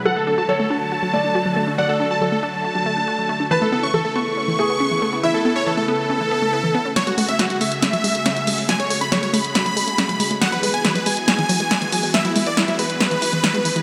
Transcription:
<<
  \new Staff \with { instrumentName = "Supersaw synth" } { \time 4/4 \key fis \minor \tempo 4 = 139 fis''16 a'16 a'16 a''16 a'16 a'16 a''2~ a''16 r16 | fis''16 a'16 a'16 a''16 a'16 a'16 a''2~ a''16 r16 | a''16 a'16 a'16 cis'''16 a'16 a'16 cis'''2~ cis'''16 r16 | e''16 a'16 a'16 cis''16 a'16 a'16 a'2~ a'16 r16 |
cis''16 fis'16 fis'16 e''16 fis'16 fis'16 e''2~ e''16 r16 | gis''16 cis''16 cis''16 b''16 cis''16 cis''16 b''2~ b''16 r16 | fis''16 b'16 b'16 gis''16 b'16 b'16 gis''2~ gis''16 r16 | e''16 e'16 e'16 d''16 e'16 e'16 b'2~ b'16 r16 | }
  \new Staff \with { instrumentName = "Felt piano" } { \time 4/4 \key fis \minor a'4 cis''4. d''4. | d''1 | b'4 a'4. gis'4. | e'1 |
r1 | r1 | r1 | r1 | }
  \new Staff \with { instrumentName = "Supersaw synth" } { \time 4/4 \key fis \minor << { <fis a'>1~ | <fis a'>1 | b'1~ | b'1 |
<gis gis'>1~ | <gis gis'>1~ | <gis gis'>1~ | <gis gis'>1 | } \\ { <d a fis'>1~ | <d a fis'>1 | <cis b e'>1~ | <cis b e'>1 |
<cis a fis'>1~ | <cis a fis'>1 | <e b fis'>1~ | <e b fis'>1 | } >> }
  \new Staff \with { instrumentName = "Synth arpeggio sound" } { \time 4/4 \key fis \minor fis16 a16 d'16 fis'16 fis16 a16 d'16 r16 fis'16 fis16 a16 d'16 fis'16 fis16 a16 d'16 | fis16 a16 d'16 fis'16 fis16 a16 d'16 r16 fis'16 fis16 a16 d'16 fis'16 fis16 a16 d'16 | e16 a16 b16 cis'16 e16 a16 b16 r16 cis'16 e16 a16 b16 cis'16 e16 a16 b16 | e16 a16 b16 cis'16 e16 a16 b16 r16 cis'16 e16 b16 a16 b16 e16 b16 cis'16 |
fis16 gis16 a16 cis'16 fis16 gis16 a16 r16 cis'16 fis16 gis16 a16 cis'16 fis16 gis16 a16 | fis16 gis16 a16 cis'16 fis16 gis16 a16 r16 cis'16 fis16 gis16 a16 cis'16 fis16 gis16 a16 | e16 fis16 gis16 b16 e16 fis16 gis16 r16 b16 e16 fis16 gis16 b16 e16 fis16 gis16 | e16 fis16 gis16 b16 e16 fis16 gis16 r16 b16 e16 e'16 e16 e16 gis16 e16 e16 | }
  \new DrumStaff \with { instrumentName = "Drums" } \drummode { \time 4/4 r4 r4 r4 r4 | r4 r4 r4 r4 | r4 r4 r4 r4 | r4 r4 r4 r4 |
<hh sn>16 hh16 hho16 hh16 <hh sn>16 hh16 hho16 hh16 <hh sn>16 hh16 hho16 hh16 <hh sn>16 hh16 hho16 hho16 | <hh sn>16 hh16 hho16 hh16 <hh sn>16 hh16 hho16 hh16 <hh sn>16 hh16 hho16 hh16 <hh sn>16 hh16 hho16 hh16 | <hh sn>16 hh16 hho16 hh16 <hh sn>16 hh16 hho16 hh16 <hh sn>16 hh16 hho16 hh16 <hh sn>16 hh16 hho16 hho16 | <hh sn>16 hh16 hho16 hh16 <hh sn>16 hh16 hho16 hh16 <hh sn>16 hh16 hho16 hh16 <hh sn>16 hh16 hho16 hh16 | }
>>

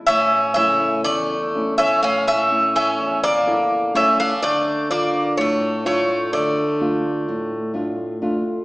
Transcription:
<<
  \new Staff \with { instrumentName = "Bouzouki" } { \time 9/8 \key d \minor \tempo 4. = 42 e''8 e''8 d''8. e''16 f''16 e''8 e''8 d''8. e''16 f''16 | d''8 d''8 cis''8 cis''8 d''4. r4 | }
  \new Staff \with { instrumentName = "Bouzouki" } { \time 9/8 \key d \minor cis'8 cis'8 a8. cis'16 cis'16 cis'8 cis'8 bes8. cis'16 d'16 | a8 bes8 a8 a8 a4. r4 | }
  \new Staff \with { instrumentName = "Nylon-string guitar" } { \time 9/8 \key d \minor a,8 <cis a e'>8 e,8 <a cis' e'>8 a,8 <a cis' e'>8 e,8 <cis e' a'>8 <a cis' e'>8 | d8 <d' f' a'>8 a,8 <a d' f'>8 d8 <a d' f'>8 a,8 <a d' f'>8 <a d' f'>8 | }
>>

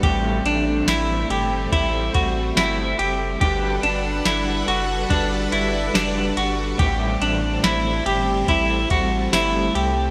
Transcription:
<<
  \new Staff \with { instrumentName = "Clean electric guitar" } { \time 4/4 \key a \dorian \tempo 4 = 71 g'8 d'8 e'8 g'8 e'8 fis'8 e'8 g'8 | g'8 d'8 e'8 fis'8 d'8 e'8 d'8 fis'8 | g'8 d'8 e'8 g'8 e'8 fis'8 e'8 g'8 | }
  \new Staff \with { instrumentName = "Clean electric guitar" } { \time 4/4 \key a \dorian <a, e g c' e' a'>2 <g c' e' a'>4 <g c' e' a'>4 | <g d' fis' b'>8 <d' fis' b'>4. <g d' fis' b'>4 <g d' fis' b'>4 | <a, e g c' e' a'>2 <g c' e' a'>4 <g c' e' a'>4 | }
  \new Staff \with { instrumentName = "String machine" } { \time 4/4 \key a \dorian <g a c'>1 | <g d' a' b' fis''>1 | <g a c'>1 | }
  \new Staff \with { instrumentName = "Sub bass" } { \clef bass \time 4/4 \key a \dorian a,,8 a,,8 a,,8 g,,8 a,,8 a,,8 g,,8 fis,,8 | g,,8 g,,8 g,,8 fis,,8 g,,8 g,,8 fis,,8 g,,8 | a,,8 a,,8 a,,8 g,,8 a,,8 a,,8 g,,8 c,8 | }
  \new DrumStaff \with { instrumentName = "Drums" } \drummode { \time 4/4 <bd cymr>8 cymr8 <cymr sn tamb>8 cymr8 <bd cymr>8 <bd cymr>8 <cymr sn tamb>8 cymr8 | <bd cymr>8 cymr8 <cymr sn tamb>8 cymr8 <bd cymr>8 cymr8 <cymr sn tamb>8 cymr8 | <bd cymr>8 cymr8 <cymr sn tamb>8 cymr8 <bd cymr>8 <bd cymr>8 <cymr sn tamb>8 cymr8 | }
>>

